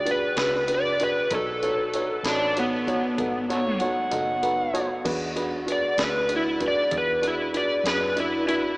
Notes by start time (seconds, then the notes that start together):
Already playing: D2
0.05 D4 F#4 G#4 B4, closed hi-hat
0.11 B4
0.36 C#2 D4 F#4 G#4 B4, snare, closed hi-hat
0.67 D4 F#4 G#4 B4, closed hi-hat
0.74 D5
0.99 D4 F#4 G#4 B4, closed hi-hat
1.31 B1 D#4 F#4 A4 C#5, kick, closed hi-hat
1.35 A4
1.63 D#4 F#4 A4 C#5, closed hi-hat
1.94 D#4 F#4 A4 C#5, closed hi-hat
2.23 A1 D#4 F#4 A4 C#5, snare, closed hi-hat
2.28 D4
2.56 B3 D#4 F#4 A4 C#5, closed hi-hat
2.87 D#4 F#4 A4 C#5, kick, closed hi-hat
3.18 G#1 D#4 F#4 A4 B4, kick, closed hi-hat
3.48 D#4 F#4 A4 C#5, closed hi-hat
3.80 D#4 F#4 A4 C#5 F#5, closed hi-hat
4.11 F#1 D#4 F#4 A4 D#5, closed hi-hat
4.42 D#4 F#4 A4 B4 F#5, closed hi-hat
4.73 D#4 F#4 A4 C#5, closed hi-hat
5.04 E2 D4 F#4 G#4 B4, kick, closed hi-hat, crash
5.35 D4 F#4 G#4 B4, closed hi-hat
5.66 D4 F#4 G#4 B4, closed hi-hat
5.72 D5
5.98 D2 D4 F#4 G#4 B4, snare, closed hi-hat
6.04 B4
6.29 D4 F#4 G#4 B4, closed hi-hat
6.36 E4
6.60 D4 F#4 G#4 B4, kick, closed hi-hat
6.68 D5
6.90 E2 D4 F#4 G#4 D5, kick, closed hi-hat
6.98 B4
7.22 D4 F#4 G#4 B4, closed hi-hat
7.27 E4
7.53 D4 F#4 G#4 B4 D5, closed hi-hat
7.84 F#2 D4 F#4 G#4 B4, snare, closed hi-hat
8.16 D4 F#4 G#4 D5, closed hi-hat
8.20 E4
8.47 D4 E4 F#4 G#4 B4, closed hi-hat